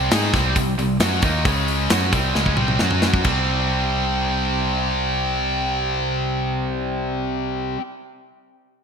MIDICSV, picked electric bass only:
0, 0, Header, 1, 2, 480
1, 0, Start_track
1, 0, Key_signature, -3, "minor"
1, 0, Tempo, 449775
1, 1553, Time_signature, 4, 2, 24, 8
1, 9432, End_track
2, 0, Start_track
2, 0, Title_t, "Picked electric bass"
2, 0, Program_c, 0, 34
2, 122, Note_on_c, 0, 44, 87
2, 344, Note_off_c, 0, 44, 0
2, 359, Note_on_c, 0, 36, 91
2, 581, Note_off_c, 0, 36, 0
2, 598, Note_on_c, 0, 36, 72
2, 820, Note_off_c, 0, 36, 0
2, 836, Note_on_c, 0, 36, 79
2, 1058, Note_off_c, 0, 36, 0
2, 1066, Note_on_c, 0, 42, 88
2, 1292, Note_off_c, 0, 42, 0
2, 1311, Note_on_c, 0, 39, 93
2, 1535, Note_off_c, 0, 39, 0
2, 1548, Note_on_c, 0, 37, 84
2, 1995, Note_off_c, 0, 37, 0
2, 2037, Note_on_c, 0, 42, 84
2, 2256, Note_off_c, 0, 42, 0
2, 2271, Note_on_c, 0, 36, 90
2, 2493, Note_off_c, 0, 36, 0
2, 2514, Note_on_c, 0, 37, 81
2, 2735, Note_off_c, 0, 37, 0
2, 2752, Note_on_c, 0, 36, 83
2, 2973, Note_off_c, 0, 36, 0
2, 2995, Note_on_c, 0, 42, 82
2, 3438, Note_off_c, 0, 42, 0
2, 3472, Note_on_c, 0, 36, 78
2, 8277, Note_off_c, 0, 36, 0
2, 9432, End_track
0, 0, End_of_file